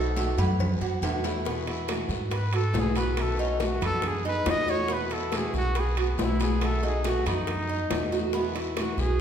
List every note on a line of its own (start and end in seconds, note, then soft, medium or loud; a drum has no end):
0.00 0.32 B1 loud
0.00 0.16 A3 soft
0.00 0.16 B3 soft
0.00 0.39 D#4 medium
0.00 0.16 F#4 soft
0.00 0.37 F#4 medium
0.00 0.40 A4 loud
0.16 0.37 B2 medium
0.16 0.37 D#3 medium
0.16 0.38 A3 medium
0.16 0.38 B3 medium
0.16 0.37 F#4 medium
0.16 cowbell medium
0.16 high conga loud
0.16 low timbale medium
0.16 low agogo medium
0.16 short guiro medium
0.38 0.78 F#2 loud
0.38 0.59 A3 soft
0.38 0.59 B3 soft
0.38 0.59 F#4 medium
0.38 0.80 B4 medium
0.38 cowbell medium
0.38 high conga soft
0.38 low conga medium
0.38 low agogo loud
0.38 short guiro medium
0.59 muted steel-string acoustic guitar stroke medium
0.59 cowbell medium
0.59 high conga soft
0.59 low conga medium
0.59 long guiro medium
0.81 1.01 F#2 medium
0.81 1.23 F#4 medium
0.81 high conga soft
0.81 low agogo medium
1.02 2.04 E2 medium
1.02 1.23 B2 medium
1.02 1.23 D#3 medium
1.02 1.24 A3 medium
1.02 1.23 B3 medium
1.02 1.23 F#4 medium
1.02 cowbell medium
1.02 high conga soft
1.02 high timbale medium
1.02 low agogo loud
1.02 short guiro medium
1.24 1.46 A3 soft
1.24 1.45 B3 soft
1.24 1.45 E4 medium
1.24 1.45 F#4 medium
1.24 cowbell medium
1.24 low timbale medium
1.24 short guiro medium
1.45 1.66 B2 medium
1.45 1.66 E3 medium
1.45 1.67 G#3 medium
1.45 1.66 B3 medium
1.45 1.66 F#4 medium
1.45 high bongo medium
1.45 high conga soft
1.45 long guiro medium
1.67 1.88 G#3 soft
1.67 1.88 B3 soft
1.67 1.88 E4 medium
1.67 1.88 F#4 soft
1.67 high bongo soft
1.67 high conga soft
1.67 high timbale medium
1.88 2.09 B2 medium
1.88 2.09 E3 medium
1.88 2.10 G#3 medium
1.88 2.10 B3 medium
1.88 2.31 F#4 medium
1.88 2.08 F#4 medium
1.88 high bongo medium
1.88 high conga medium
1.88 high timbale medium
1.88 low timbale medium
1.88 short guiro medium
2.09 2.70 G#2 loud
2.09 2.30 G#3 soft
2.09 2.31 B3 soft
2.09 2.31 F#4 medium
2.09 high bongo soft
2.09 high conga soft
2.09 short guiro medium
2.31 2.53 B4 medium
2.31 muted steel-string acoustic guitar stroke medium
2.31 high bongo medium
2.31 high conga soft
2.31 high timbale medium
2.31 long guiro medium
2.35 2.57 B4 medium
2.53 2.95 F#4 medium
2.53 2.81 A4 medium
2.53 high conga soft
2.53 high timbale medium
2.73 3.76 B1 medium
2.73 2.95 B2 medium
2.73 2.95 E3 medium
2.73 2.95 G#3 medium
2.73 2.95 B3 medium
2.73 2.94 F#4 medium
2.73 high bongo soft
2.73 low bongo medium
2.73 high conga medium
2.73 low timbale medium
2.73 short guiro medium
2.79 2.99 G#4 medium
2.95 3.17 G#3 soft
2.95 3.17 B3 medium
2.95 3.38 B3 medium
2.95 3.16 F#4 medium
2.95 3.23 B4 medium
2.95 high bongo soft
2.95 high timbale medium
2.95 short guiro medium
3.17 3.38 B2 medium
3.17 3.39 D#3 medium
3.17 3.39 A3 medium
3.17 3.39 B3 medium
3.17 3.38 F#4 medium
3.17 high bongo medium
3.17 high conga soft
3.17 high timbale medium
3.17 long guiro medium
3.22 3.40 A4 medium
3.39 3.60 A3 soft
3.39 3.60 B3 soft
3.39 3.66 C#4 medium
3.39 3.60 D#4 medium
3.39 3.60 F#4 soft
3.39 high bongo soft
3.39 high conga soft
3.60 3.81 B2 medium
3.60 3.81 D#3 medium
3.60 3.82 A3 medium
3.60 3.82 B3 medium
3.60 3.81 F#4 medium
3.60 3.80 F#4 medium
3.60 high bongo medium
3.60 high conga loud
3.60 high timbale medium
3.60 low timbale medium
3.60 short guiro medium
3.64 3.84 F#4 medium
3.81 4.42 F#2 medium
3.81 4.02 A3 soft
3.81 4.24 B3 medium
3.81 4.02 B3 soft
3.81 4.02 F#4 medium
3.81 4.09 A4 loud
3.81 high bongo soft
3.81 high conga soft
3.81 low conga medium
3.81 high timbale medium
3.81 short guiro medium
4.02 muted steel-string acoustic guitar stroke medium
4.02 high bongo medium
4.02 high conga soft
4.02 low conga medium
4.02 high timbale medium
4.02 long guiro medium
4.07 4.26 G#4 medium
4.25 4.67 D#4 medium
4.25 4.51 B4 loud
4.25 high conga soft
4.46 5.48 E2 medium
4.46 4.67 B2 medium
4.46 4.67 D#3 medium
4.46 4.67 A3 medium
4.46 4.67 B3 medium
4.46 4.66 F#4 medium
4.46 high bongo soft
4.46 low bongo medium
4.46 high timbale medium
4.46 low timbale medium
4.46 short guiro medium
4.50 4.71 D#5 loud
4.67 4.89 A3 medium
4.67 4.89 B3 soft
4.67 4.88 F#4 medium
4.67 4.89 F#4 medium
4.67 4.94 C#5 loud
4.67 high bongo soft
4.67 high conga medium
4.67 short guiro medium
4.88 5.10 B2 medium
4.88 5.10 E3 medium
4.88 5.10 G#3 medium
4.88 5.10 B3 medium
4.88 5.09 F#4 medium
4.88 high bongo medium
4.88 high conga soft
4.88 long guiro medium
4.93 5.14 B4 medium
5.10 5.32 G#3 soft
5.10 5.32 B3 soft
5.10 5.32 E4 medium
5.10 5.32 F#4 soft
5.10 5.38 A4 medium
5.10 high bongo soft
5.10 high conga soft
5.10 high timbale medium
5.32 5.53 B2 medium
5.32 5.54 E3 medium
5.32 5.54 G#3 medium
5.32 5.54 B3 medium
5.32 5.74 F#4 medium
5.32 5.53 F#4 medium
5.32 high bongo medium
5.32 high conga medium
5.32 high timbale medium
5.32 low timbale medium
5.32 short guiro medium
5.37 5.55 G#4 medium
5.54 6.14 B1 medium
5.54 5.75 G#3 soft
5.54 5.75 B3 soft
5.54 5.75 F#4 soft
5.54 5.81 F#4 loud
5.54 high bongo soft
5.54 high conga soft
5.54 short guiro medium
5.75 5.97 B4 medium
5.75 muted steel-string acoustic guitar stroke medium
5.75 high bongo medium
5.75 high conga soft
5.75 high timbale medium
5.75 long guiro medium
5.80 5.99 G#4 medium
5.97 6.25 B3 medium
5.97 6.39 F#4 medium
5.97 high conga soft
5.97 high timbale medium
6.18 7.20 B1 medium
6.18 6.40 B2 medium
6.18 6.40 E3 medium
6.18 6.40 G#3 medium
6.18 6.40 B3 medium
6.18 6.39 F#4 medium
6.18 high bongo soft
6.18 low bongo medium
6.18 high conga medium
6.18 low timbale medium
6.18 short guiro medium
6.23 6.42 E4 medium
6.40 6.62 G#3 soft
6.40 6.82 B3 medium
6.40 6.61 B3 medium
6.40 6.61 F#4 medium
6.40 6.67 G#4 medium
6.40 high bongo soft
6.40 high conga medium
6.40 high timbale medium
6.40 short guiro medium
6.61 6.83 B2 medium
6.61 6.83 D#3 medium
6.61 6.83 A3 medium
6.61 6.83 B3 medium
6.61 6.82 F#4 medium
6.61 high bongo medium
6.61 high conga soft
6.61 high timbale medium
6.61 long guiro medium
6.66 6.85 A4 loud
6.83 7.04 A3 soft
6.83 7.04 B3 soft
6.83 7.04 D#4 medium
6.83 7.04 F#4 medium
6.83 7.10 G#4 medium
6.83 high bongo soft
6.83 high conga soft
7.04 7.25 B2 medium
7.04 7.25 D#3 medium
7.04 7.26 A3 medium
7.04 7.25 B3 medium
7.04 7.26 F#4 medium
7.04 7.24 F#4 medium
7.04 high bongo medium
7.04 high conga medium
7.04 high timbale medium
7.04 low timbale medium
7.04 short guiro medium
7.08 7.27 F#4 medium
7.26 7.87 F#2 medium
7.26 7.47 A3 soft
7.26 7.68 B3 medium
7.26 7.47 B3 soft
7.26 8.30 D#4 medium
7.26 7.47 F#4 medium
7.26 high bongo soft
7.26 high conga soft
7.26 low conga medium
7.26 high timbale medium
7.26 short guiro medium
7.47 muted steel-string acoustic guitar stroke medium
7.47 high bongo medium
7.47 high conga soft
7.47 low conga medium
7.47 high timbale medium
7.47 long guiro medium
7.69 8.11 D#4 medium
7.69 high conga soft
7.90 8.92 E2 medium
7.90 8.11 B2 medium
7.90 8.11 D#3 medium
7.90 8.12 A3 medium
7.90 8.12 B3 medium
7.90 8.11 F#4 medium
7.90 high bongo soft
7.90 low bongo medium
7.90 high timbale medium
7.90 low timbale medium
7.90 short guiro medium
8.12 8.34 A3 soft
8.12 8.34 B3 soft
8.12 8.33 F#4 medium
8.12 high bongo soft
8.12 high conga medium
8.12 short guiro medium
8.33 8.55 B2 medium
8.33 8.55 E3 medium
8.33 8.55 G#3 medium
8.33 8.55 B3 medium
8.33 8.55 F#4 medium
8.33 high bongo medium
8.33 high conga soft
8.33 long guiro medium
8.55 8.77 G#3 soft
8.55 8.77 B3 soft
8.55 8.76 E4 medium
8.55 8.76 F#4 soft
8.55 high bongo soft
8.55 high conga soft
8.55 high timbale medium
8.77 8.98 B2 medium
8.77 8.98 E3 medium
8.77 8.99 G#3 medium
8.77 8.99 B3 medium
8.77 9.18 F#4 medium
8.77 8.98 F#4 medium
8.77 9.01 F#4 medium
8.77 high bongo medium
8.77 high conga medium
8.77 high timbale medium
8.77 low timbale medium
8.77 short guiro medium
8.97 9.21 B1 medium
8.97 9.20 G#3 soft
8.97 9.20 B3 medium
8.97 9.19 F#4 soft
8.97 9.21 G#4 medium
8.97 high bongo soft
8.97 high conga soft
8.97 short guiro medium